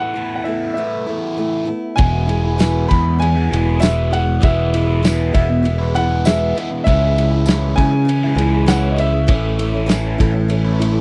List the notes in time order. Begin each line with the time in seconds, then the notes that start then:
Already playing: A2 E3 A3 B3 E4 A4 F#5
0.14 A2 E3 A3 B3 E4
0.35 F#5
0.44 B3 E4 E5
0.48 A3
0.74 A2 E3 E5
0.78 A3 B3 E4
1.06 A2 E3 A3 B3 E4
1.37 E3 A3 B3 E4
1.65 A3 B3 E4
1.96 E1 E2 B2 E3 G#3 B3 E4 G#4 G#5, kick, ride
2.00 B3 E4
2.27 E3 G#3 B3 E4, ride
2.44 E3 G#3 B3 E4
2.59 E2 B2 E3 G#3 B3 E4, snare, ride, tambourine
2.88 E2 E3 G#3 B3 E4 B5, kick, ride
2.93 E4
3.06 muted overdriven electric guitar stroke
3.19 E3 G#3 B3 E4 G#5, ride
3.35 E3 G#3 B3 E4
3.50 E1 E3 G#3 B3, ride
3.55 E4
3.65 E3 G#3 B3 E4
3.80 E2 B2 E3 G#3 B3 E4 E5, snare, ride, tambourine
4.10 E3 G#3 B3 E4 F#5, ride
4.26 muted overdriven electric guitar stroke
4.40 E2 B2 E3 G#3 B3 E4, kick, ride
4.44 E1 B3 E4 G#4 E5
4.73 E3 G#3 B3 E4, ride
4.85 E3 G#3 B3 E4
5.01 E2 B2 E3 G#3 B3 E4, ride
5.05 snare, tambourine
5.32 E1 E3 G#3 B3 E4 E5, kick, ride
5.50 muted overdriven electric guitar stroke
5.63 E3 G#3 B3 E4, ride
5.78 G#3 B3 E4
5.82 E3
5.94 E3 G#3 B3 E4 F#5, ride
6.09 E3 G#3 B3 E4
6.24 E2 B2 E3 G#3 B3 E4 E5, snare, ride, tambourine
6.55 E3 G#3 B3 E4, ride
6.72 muted overdriven electric guitar stroke
6.84 C#2 C#3 E3 G#3 E5, kick, ride
6.89 G#3 C#4 E4 G#4
7.16 G#3 C#4 E4, ride
7.31 G#3 C#4 E4
7.46 C#3 E3 G#3 C#4, snare, ride, tambourine
7.50 E4
7.76 C#3 E3 G#3 C#4 E4 G#5, kick, ride
7.81 E4
7.94 muted overdriven electric guitar stroke
8.05 E3 G#3 C#4 E4, ride
8.24 G#3 C#4 E4
8.35 C#2 E3 C#4 E4, ride
8.40 G#3 C#4 E4
8.53 G#3 C#4 E4
8.68 C#3 E3 G#3 C#4 E4 F#5, snare, ride, tambourine
8.91 D#5
8.96 E3 G#3 C#4 E4 E5, ride
9.01 E4
9.14 muted overdriven electric guitar stroke
9.28 A1 A2 E3 A3 C#4 E4 A4, kick, ride
9.58 A3 C#4 E4, ride
9.73 C#4 E4
9.77 A3
9.88 A2 E3 A3 C#4 E4, snare, ride, tambourine
9.92 E4
10.18 A1 E3 A3 C#4 E4, kick, ride
10.23 E4
10.35 muted overdriven electric guitar stroke
10.48 E3 A3 C#4 E4, ride
10.65 A3 C#4 E4
10.80 E3 A3 C#4 E4, ride
10.95 C#4 E4